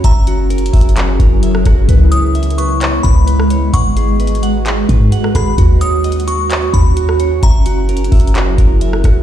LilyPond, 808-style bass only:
\new Staff \with { instrumentName = "808-style bass" } { \clef bass \time 4/4 \key fis \mixolydian \tempo 4 = 130 fis,,4. fis,,4 fis,,4 fis,,8 | cis,2~ cis,8 cis,4. | gis,,2~ gis,,8 gis,8 r8 gis,,8 | dis,2~ dis,8 dis,4. |
fis,,4. fis,,4 fis,,4 fis,,8 | }